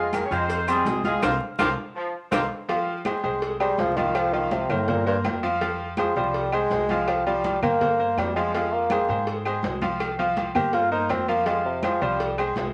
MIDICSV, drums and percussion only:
0, 0, Header, 1, 2, 480
1, 0, Start_track
1, 0, Key_signature, -4, "minor"
1, 0, Tempo, 365854
1, 1610, Time_signature, 4, 2, 24, 8
1, 16708, End_track
2, 0, Start_track
2, 0, Title_t, "Drums"
2, 168, Note_on_c, 9, 63, 98
2, 172, Note_on_c, 9, 56, 72
2, 173, Note_on_c, 9, 75, 68
2, 175, Note_on_c, 9, 70, 77
2, 183, Note_on_c, 9, 66, 66
2, 183, Note_on_c, 9, 68, 112
2, 300, Note_off_c, 9, 63, 0
2, 304, Note_off_c, 9, 56, 0
2, 304, Note_off_c, 9, 75, 0
2, 306, Note_off_c, 9, 70, 0
2, 314, Note_off_c, 9, 66, 0
2, 314, Note_off_c, 9, 68, 0
2, 407, Note_on_c, 9, 63, 40
2, 416, Note_on_c, 9, 70, 32
2, 421, Note_on_c, 9, 68, 91
2, 539, Note_off_c, 9, 63, 0
2, 547, Note_off_c, 9, 70, 0
2, 552, Note_off_c, 9, 68, 0
2, 643, Note_on_c, 9, 63, 37
2, 652, Note_on_c, 9, 56, 110
2, 652, Note_on_c, 9, 70, 73
2, 774, Note_off_c, 9, 63, 0
2, 783, Note_off_c, 9, 56, 0
2, 784, Note_off_c, 9, 70, 0
2, 884, Note_on_c, 9, 63, 38
2, 890, Note_on_c, 9, 70, 70
2, 891, Note_on_c, 9, 75, 73
2, 902, Note_on_c, 9, 68, 125
2, 1015, Note_off_c, 9, 63, 0
2, 1021, Note_off_c, 9, 70, 0
2, 1022, Note_off_c, 9, 75, 0
2, 1033, Note_off_c, 9, 68, 0
2, 1121, Note_on_c, 9, 63, 90
2, 1129, Note_on_c, 9, 70, 81
2, 1133, Note_on_c, 9, 56, 79
2, 1142, Note_on_c, 9, 66, 91
2, 1252, Note_off_c, 9, 63, 0
2, 1260, Note_off_c, 9, 70, 0
2, 1265, Note_off_c, 9, 56, 0
2, 1273, Note_off_c, 9, 66, 0
2, 1362, Note_on_c, 9, 63, 85
2, 1372, Note_on_c, 9, 70, 34
2, 1375, Note_on_c, 9, 56, 70
2, 1380, Note_on_c, 9, 68, 92
2, 1493, Note_off_c, 9, 63, 0
2, 1504, Note_off_c, 9, 70, 0
2, 1506, Note_off_c, 9, 56, 0
2, 1511, Note_off_c, 9, 68, 0
2, 1607, Note_on_c, 9, 70, 108
2, 1609, Note_on_c, 9, 63, 102
2, 1610, Note_on_c, 9, 75, 103
2, 1612, Note_on_c, 9, 56, 106
2, 1619, Note_on_c, 9, 65, 108
2, 1738, Note_off_c, 9, 70, 0
2, 1740, Note_off_c, 9, 63, 0
2, 1741, Note_off_c, 9, 75, 0
2, 1743, Note_off_c, 9, 56, 0
2, 1750, Note_off_c, 9, 65, 0
2, 2084, Note_on_c, 9, 63, 102
2, 2084, Note_on_c, 9, 70, 103
2, 2086, Note_on_c, 9, 75, 109
2, 2093, Note_on_c, 9, 56, 94
2, 2102, Note_on_c, 9, 65, 107
2, 2215, Note_off_c, 9, 63, 0
2, 2215, Note_off_c, 9, 70, 0
2, 2218, Note_off_c, 9, 75, 0
2, 2224, Note_off_c, 9, 56, 0
2, 2233, Note_off_c, 9, 65, 0
2, 3042, Note_on_c, 9, 63, 106
2, 3049, Note_on_c, 9, 70, 109
2, 3052, Note_on_c, 9, 75, 91
2, 3055, Note_on_c, 9, 65, 101
2, 3058, Note_on_c, 9, 56, 114
2, 3173, Note_off_c, 9, 63, 0
2, 3180, Note_off_c, 9, 70, 0
2, 3183, Note_off_c, 9, 75, 0
2, 3187, Note_off_c, 9, 65, 0
2, 3189, Note_off_c, 9, 56, 0
2, 3523, Note_on_c, 9, 63, 37
2, 3532, Note_on_c, 9, 56, 116
2, 3540, Note_on_c, 9, 68, 88
2, 3654, Note_off_c, 9, 63, 0
2, 3663, Note_off_c, 9, 56, 0
2, 3671, Note_off_c, 9, 68, 0
2, 3764, Note_on_c, 9, 63, 37
2, 3895, Note_off_c, 9, 63, 0
2, 4002, Note_on_c, 9, 63, 92
2, 4005, Note_on_c, 9, 75, 66
2, 4011, Note_on_c, 9, 56, 66
2, 4012, Note_on_c, 9, 66, 68
2, 4012, Note_on_c, 9, 68, 112
2, 4133, Note_off_c, 9, 63, 0
2, 4136, Note_off_c, 9, 75, 0
2, 4142, Note_off_c, 9, 56, 0
2, 4143, Note_off_c, 9, 66, 0
2, 4143, Note_off_c, 9, 68, 0
2, 4235, Note_on_c, 9, 63, 39
2, 4250, Note_on_c, 9, 68, 82
2, 4367, Note_off_c, 9, 63, 0
2, 4381, Note_off_c, 9, 68, 0
2, 4473, Note_on_c, 9, 63, 38
2, 4488, Note_on_c, 9, 56, 107
2, 4604, Note_off_c, 9, 63, 0
2, 4619, Note_off_c, 9, 56, 0
2, 4722, Note_on_c, 9, 63, 34
2, 4726, Note_on_c, 9, 75, 69
2, 4729, Note_on_c, 9, 68, 118
2, 4853, Note_off_c, 9, 63, 0
2, 4857, Note_off_c, 9, 75, 0
2, 4861, Note_off_c, 9, 68, 0
2, 4960, Note_on_c, 9, 63, 91
2, 4967, Note_on_c, 9, 56, 77
2, 4972, Note_on_c, 9, 66, 87
2, 5092, Note_off_c, 9, 63, 0
2, 5098, Note_off_c, 9, 56, 0
2, 5103, Note_off_c, 9, 66, 0
2, 5203, Note_on_c, 9, 63, 89
2, 5205, Note_on_c, 9, 56, 73
2, 5211, Note_on_c, 9, 68, 88
2, 5334, Note_off_c, 9, 63, 0
2, 5336, Note_off_c, 9, 56, 0
2, 5342, Note_off_c, 9, 68, 0
2, 5443, Note_on_c, 9, 56, 107
2, 5445, Note_on_c, 9, 68, 116
2, 5445, Note_on_c, 9, 75, 68
2, 5446, Note_on_c, 9, 63, 36
2, 5575, Note_off_c, 9, 56, 0
2, 5576, Note_off_c, 9, 68, 0
2, 5576, Note_off_c, 9, 75, 0
2, 5577, Note_off_c, 9, 63, 0
2, 5686, Note_on_c, 9, 63, 37
2, 5817, Note_off_c, 9, 63, 0
2, 5922, Note_on_c, 9, 63, 93
2, 5925, Note_on_c, 9, 66, 68
2, 5925, Note_on_c, 9, 68, 90
2, 5927, Note_on_c, 9, 56, 63
2, 6053, Note_off_c, 9, 63, 0
2, 6057, Note_off_c, 9, 66, 0
2, 6057, Note_off_c, 9, 68, 0
2, 6058, Note_off_c, 9, 56, 0
2, 6162, Note_on_c, 9, 75, 67
2, 6163, Note_on_c, 9, 63, 38
2, 6163, Note_on_c, 9, 64, 84
2, 6164, Note_on_c, 9, 68, 106
2, 6294, Note_off_c, 9, 63, 0
2, 6294, Note_off_c, 9, 64, 0
2, 6294, Note_off_c, 9, 75, 0
2, 6295, Note_off_c, 9, 68, 0
2, 6402, Note_on_c, 9, 56, 107
2, 6402, Note_on_c, 9, 63, 36
2, 6402, Note_on_c, 9, 64, 79
2, 6533, Note_off_c, 9, 56, 0
2, 6533, Note_off_c, 9, 63, 0
2, 6533, Note_off_c, 9, 64, 0
2, 6642, Note_on_c, 9, 63, 36
2, 6773, Note_off_c, 9, 63, 0
2, 6880, Note_on_c, 9, 56, 78
2, 6882, Note_on_c, 9, 63, 84
2, 6882, Note_on_c, 9, 75, 67
2, 6886, Note_on_c, 9, 66, 94
2, 6886, Note_on_c, 9, 68, 108
2, 7012, Note_off_c, 9, 56, 0
2, 7013, Note_off_c, 9, 63, 0
2, 7013, Note_off_c, 9, 75, 0
2, 7017, Note_off_c, 9, 66, 0
2, 7017, Note_off_c, 9, 68, 0
2, 7118, Note_on_c, 9, 63, 34
2, 7125, Note_on_c, 9, 68, 71
2, 7249, Note_off_c, 9, 63, 0
2, 7256, Note_off_c, 9, 68, 0
2, 7360, Note_on_c, 9, 63, 37
2, 7364, Note_on_c, 9, 56, 118
2, 7368, Note_on_c, 9, 68, 93
2, 7491, Note_off_c, 9, 63, 0
2, 7496, Note_off_c, 9, 56, 0
2, 7499, Note_off_c, 9, 68, 0
2, 7600, Note_on_c, 9, 63, 34
2, 7731, Note_off_c, 9, 63, 0
2, 7833, Note_on_c, 9, 63, 94
2, 7838, Note_on_c, 9, 75, 70
2, 7840, Note_on_c, 9, 56, 68
2, 7846, Note_on_c, 9, 66, 64
2, 7846, Note_on_c, 9, 68, 111
2, 7964, Note_off_c, 9, 63, 0
2, 7969, Note_off_c, 9, 75, 0
2, 7971, Note_off_c, 9, 56, 0
2, 7977, Note_off_c, 9, 66, 0
2, 7977, Note_off_c, 9, 68, 0
2, 8074, Note_on_c, 9, 63, 39
2, 8090, Note_on_c, 9, 68, 87
2, 8205, Note_off_c, 9, 63, 0
2, 8221, Note_off_c, 9, 68, 0
2, 8316, Note_on_c, 9, 63, 36
2, 8322, Note_on_c, 9, 56, 104
2, 8447, Note_off_c, 9, 63, 0
2, 8453, Note_off_c, 9, 56, 0
2, 8556, Note_on_c, 9, 63, 36
2, 8559, Note_on_c, 9, 75, 74
2, 8564, Note_on_c, 9, 68, 119
2, 8687, Note_off_c, 9, 63, 0
2, 8690, Note_off_c, 9, 75, 0
2, 8695, Note_off_c, 9, 68, 0
2, 8794, Note_on_c, 9, 63, 87
2, 8801, Note_on_c, 9, 56, 76
2, 8811, Note_on_c, 9, 66, 89
2, 8925, Note_off_c, 9, 63, 0
2, 8932, Note_off_c, 9, 56, 0
2, 8942, Note_off_c, 9, 66, 0
2, 9039, Note_on_c, 9, 63, 84
2, 9043, Note_on_c, 9, 56, 69
2, 9045, Note_on_c, 9, 68, 85
2, 9170, Note_off_c, 9, 63, 0
2, 9175, Note_off_c, 9, 56, 0
2, 9176, Note_off_c, 9, 68, 0
2, 9283, Note_on_c, 9, 75, 68
2, 9286, Note_on_c, 9, 56, 111
2, 9287, Note_on_c, 9, 63, 38
2, 9288, Note_on_c, 9, 68, 116
2, 9414, Note_off_c, 9, 75, 0
2, 9417, Note_off_c, 9, 56, 0
2, 9419, Note_off_c, 9, 63, 0
2, 9419, Note_off_c, 9, 68, 0
2, 9524, Note_on_c, 9, 63, 37
2, 9655, Note_off_c, 9, 63, 0
2, 9767, Note_on_c, 9, 63, 95
2, 9769, Note_on_c, 9, 56, 67
2, 9771, Note_on_c, 9, 66, 67
2, 9771, Note_on_c, 9, 68, 92
2, 9898, Note_off_c, 9, 63, 0
2, 9901, Note_off_c, 9, 56, 0
2, 9902, Note_off_c, 9, 66, 0
2, 9902, Note_off_c, 9, 68, 0
2, 10005, Note_on_c, 9, 75, 74
2, 10006, Note_on_c, 9, 63, 37
2, 10006, Note_on_c, 9, 64, 86
2, 10012, Note_on_c, 9, 68, 107
2, 10137, Note_off_c, 9, 63, 0
2, 10137, Note_off_c, 9, 64, 0
2, 10137, Note_off_c, 9, 75, 0
2, 10143, Note_off_c, 9, 68, 0
2, 10248, Note_on_c, 9, 63, 38
2, 10248, Note_on_c, 9, 64, 76
2, 10249, Note_on_c, 9, 56, 105
2, 10379, Note_off_c, 9, 63, 0
2, 10379, Note_off_c, 9, 64, 0
2, 10381, Note_off_c, 9, 56, 0
2, 10482, Note_on_c, 9, 63, 37
2, 10614, Note_off_c, 9, 63, 0
2, 10727, Note_on_c, 9, 63, 89
2, 10727, Note_on_c, 9, 75, 63
2, 10732, Note_on_c, 9, 56, 73
2, 10739, Note_on_c, 9, 66, 89
2, 10739, Note_on_c, 9, 68, 104
2, 10858, Note_off_c, 9, 63, 0
2, 10858, Note_off_c, 9, 75, 0
2, 10864, Note_off_c, 9, 56, 0
2, 10870, Note_off_c, 9, 66, 0
2, 10870, Note_off_c, 9, 68, 0
2, 10971, Note_on_c, 9, 63, 35
2, 10976, Note_on_c, 9, 68, 73
2, 11102, Note_off_c, 9, 63, 0
2, 11107, Note_off_c, 9, 68, 0
2, 11209, Note_on_c, 9, 63, 37
2, 11210, Note_on_c, 9, 68, 81
2, 11211, Note_on_c, 9, 56, 113
2, 11340, Note_off_c, 9, 63, 0
2, 11341, Note_off_c, 9, 68, 0
2, 11342, Note_off_c, 9, 56, 0
2, 11442, Note_on_c, 9, 63, 37
2, 11573, Note_off_c, 9, 63, 0
2, 11676, Note_on_c, 9, 63, 100
2, 11684, Note_on_c, 9, 56, 65
2, 11685, Note_on_c, 9, 75, 74
2, 11692, Note_on_c, 9, 66, 64
2, 11692, Note_on_c, 9, 68, 115
2, 11807, Note_off_c, 9, 63, 0
2, 11815, Note_off_c, 9, 56, 0
2, 11816, Note_off_c, 9, 75, 0
2, 11824, Note_off_c, 9, 66, 0
2, 11824, Note_off_c, 9, 68, 0
2, 11917, Note_on_c, 9, 63, 37
2, 11925, Note_on_c, 9, 68, 91
2, 12048, Note_off_c, 9, 63, 0
2, 12056, Note_off_c, 9, 68, 0
2, 12161, Note_on_c, 9, 63, 38
2, 12163, Note_on_c, 9, 56, 112
2, 12292, Note_off_c, 9, 63, 0
2, 12294, Note_off_c, 9, 56, 0
2, 12397, Note_on_c, 9, 63, 37
2, 12403, Note_on_c, 9, 75, 74
2, 12407, Note_on_c, 9, 68, 118
2, 12528, Note_off_c, 9, 63, 0
2, 12534, Note_off_c, 9, 75, 0
2, 12538, Note_off_c, 9, 68, 0
2, 12633, Note_on_c, 9, 63, 86
2, 12647, Note_on_c, 9, 66, 93
2, 12649, Note_on_c, 9, 56, 76
2, 12764, Note_off_c, 9, 63, 0
2, 12778, Note_off_c, 9, 66, 0
2, 12780, Note_off_c, 9, 56, 0
2, 12877, Note_on_c, 9, 63, 88
2, 12885, Note_on_c, 9, 56, 67
2, 12890, Note_on_c, 9, 68, 82
2, 13008, Note_off_c, 9, 63, 0
2, 13016, Note_off_c, 9, 56, 0
2, 13021, Note_off_c, 9, 68, 0
2, 13118, Note_on_c, 9, 63, 35
2, 13122, Note_on_c, 9, 68, 117
2, 13123, Note_on_c, 9, 75, 65
2, 13124, Note_on_c, 9, 56, 110
2, 13249, Note_off_c, 9, 63, 0
2, 13253, Note_off_c, 9, 68, 0
2, 13255, Note_off_c, 9, 56, 0
2, 13255, Note_off_c, 9, 75, 0
2, 13361, Note_on_c, 9, 63, 37
2, 13493, Note_off_c, 9, 63, 0
2, 13599, Note_on_c, 9, 56, 68
2, 13604, Note_on_c, 9, 63, 95
2, 13612, Note_on_c, 9, 66, 65
2, 13612, Note_on_c, 9, 68, 90
2, 13730, Note_off_c, 9, 56, 0
2, 13735, Note_off_c, 9, 63, 0
2, 13744, Note_off_c, 9, 66, 0
2, 13744, Note_off_c, 9, 68, 0
2, 13839, Note_on_c, 9, 75, 68
2, 13844, Note_on_c, 9, 63, 37
2, 13844, Note_on_c, 9, 64, 91
2, 13847, Note_on_c, 9, 68, 114
2, 13970, Note_off_c, 9, 75, 0
2, 13976, Note_off_c, 9, 63, 0
2, 13976, Note_off_c, 9, 64, 0
2, 13979, Note_off_c, 9, 68, 0
2, 14078, Note_on_c, 9, 56, 114
2, 14086, Note_on_c, 9, 63, 41
2, 14210, Note_off_c, 9, 56, 0
2, 14217, Note_off_c, 9, 63, 0
2, 14322, Note_on_c, 9, 63, 38
2, 14454, Note_off_c, 9, 63, 0
2, 14555, Note_on_c, 9, 56, 79
2, 14560, Note_on_c, 9, 63, 90
2, 14560, Note_on_c, 9, 75, 64
2, 14566, Note_on_c, 9, 66, 88
2, 14566, Note_on_c, 9, 68, 108
2, 14686, Note_off_c, 9, 56, 0
2, 14691, Note_off_c, 9, 63, 0
2, 14691, Note_off_c, 9, 75, 0
2, 14697, Note_off_c, 9, 66, 0
2, 14697, Note_off_c, 9, 68, 0
2, 14805, Note_on_c, 9, 63, 35
2, 14811, Note_on_c, 9, 68, 69
2, 14936, Note_off_c, 9, 63, 0
2, 14942, Note_off_c, 9, 68, 0
2, 15037, Note_on_c, 9, 56, 111
2, 15040, Note_on_c, 9, 63, 37
2, 15047, Note_on_c, 9, 68, 89
2, 15168, Note_off_c, 9, 56, 0
2, 15171, Note_off_c, 9, 63, 0
2, 15178, Note_off_c, 9, 68, 0
2, 15281, Note_on_c, 9, 63, 35
2, 15413, Note_off_c, 9, 63, 0
2, 15516, Note_on_c, 9, 63, 96
2, 15523, Note_on_c, 9, 75, 70
2, 15525, Note_on_c, 9, 56, 67
2, 15535, Note_on_c, 9, 66, 66
2, 15535, Note_on_c, 9, 68, 117
2, 15647, Note_off_c, 9, 63, 0
2, 15654, Note_off_c, 9, 75, 0
2, 15656, Note_off_c, 9, 56, 0
2, 15666, Note_off_c, 9, 66, 0
2, 15666, Note_off_c, 9, 68, 0
2, 15771, Note_on_c, 9, 68, 85
2, 15902, Note_off_c, 9, 68, 0
2, 15998, Note_on_c, 9, 63, 38
2, 16008, Note_on_c, 9, 56, 114
2, 16129, Note_off_c, 9, 63, 0
2, 16139, Note_off_c, 9, 56, 0
2, 16238, Note_on_c, 9, 63, 38
2, 16247, Note_on_c, 9, 75, 73
2, 16259, Note_on_c, 9, 68, 116
2, 16369, Note_off_c, 9, 63, 0
2, 16378, Note_off_c, 9, 75, 0
2, 16390, Note_off_c, 9, 68, 0
2, 16476, Note_on_c, 9, 63, 87
2, 16487, Note_on_c, 9, 56, 78
2, 16500, Note_on_c, 9, 66, 90
2, 16607, Note_off_c, 9, 63, 0
2, 16618, Note_off_c, 9, 56, 0
2, 16632, Note_off_c, 9, 66, 0
2, 16708, End_track
0, 0, End_of_file